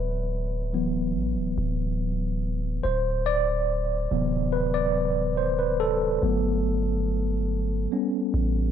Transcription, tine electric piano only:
Already playing: B4
0.73 E3 F#3 B3
2.83 C5
3.26 D5
4.11 C3 E3 F#3 B3
4.53 B4
4.74 D5
5.37 C5
5.59 B4
5.80 A4
6.23 F#3 A3 B3
7.92 G3 B3 C#4

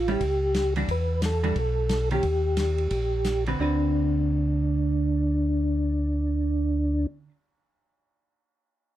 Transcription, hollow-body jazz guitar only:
0.08 G3 C#4 E4
0.76 E3 G3 D4 F#4
1.44 E3 G3 D4 F#4
2.11 D#3 A#3 C#4 G4
3.47 D3 C4 F#4 B4
3.59 D3 C4 F#4 B4

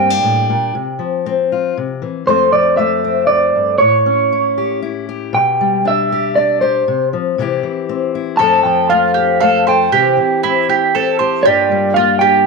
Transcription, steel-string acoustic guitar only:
Already playing: G2 G3 A#3 C4 G4
0.10 D4
0.23 A2
0.50 A#2
0.75 C3
0.99 F3
1.26 C4
1.52 F4
1.77 C3
2.02 E3
2.27 F2 F3 A3 C4 A4
2.53 F3
2.79 A3
3.04 C4
3.30 F2
3.55 G2
3.81 A2
4.06 C#4
4.33 E4
4.58 G4
4.82 E4
5.09 G4
5.33 B2
5.61 G3
5.85 D4
6.12 G4
6.37 D4
6.62 G4
6.88 C3
7.13 F3
7.38 C3 E3 C4 E4 G4
7.63 E3
7.89 C4
8.15 E4
8.39 F2 F3 A3 C4 A4
8.65 F3
8.92 A3
9.17 C4
9.43 A3
9.68 A4
9.92 C3 E3 C4 E4 G4
10.17 E3
10.44 C4
10.69 E4
10.95 C4
11.20 G4
11.45 G2 G3 A#3 D4 F4
11.72 G3
11.97 A#3
12.22 D4

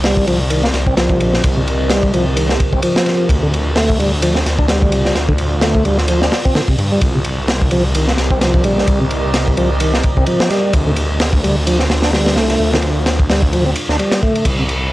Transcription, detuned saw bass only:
Already playing: C2
0.27 C2
0.74 C2
1.20 A#1
1.44 C2
2.13 C2
2.73 C2
3.29 D2
3.99 D2
4.46 D2
4.92 C2
5.15 D2
5.85 D2
6.78 G2
7.02 C2
7.72 C2
8.18 C2
8.64 A#1
8.88 C2
9.58 C2
10.17 C2
10.74 D2
11.43 D2
11.90 D2
12.36 C2
12.60 D2
13.29 D2
13.89 D2
14.45 C2

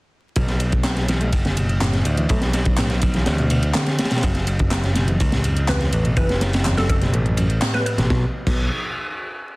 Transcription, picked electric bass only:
0.37 B1
1.33 F#1
2.06 D2
2.30 B1
3.26 D2
4.23 F#1
5.21 C#2
5.93 A1
6.17 F#1
7.13 A1
7.98 A1
8.10 B1
8.47 B1

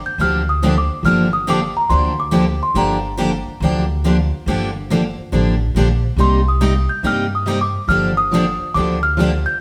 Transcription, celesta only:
0.06 G6
0.21 F6
0.49 D#6
0.78 D6
1.05 F6
1.33 D#6
1.50 D6
1.77 A#5
1.90 C6
2.20 D6
2.63 C6
2.78 A#5
6.20 C6
6.48 D#6
6.89 G6
7.07 F6
7.35 D#6
7.61 D6
7.89 F6
8.17 D#6
8.74 D6
9.03 F6
9.46 G6

